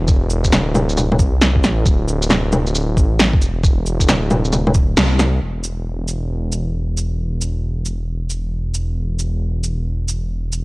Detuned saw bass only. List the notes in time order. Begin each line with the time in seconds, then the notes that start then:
Already playing: E1
0.53 D1
1.19 C2
1.64 A1
1.86 D1
2.97 A1
3.33 E1
4.08 D1
4.97 C2
5.42 E1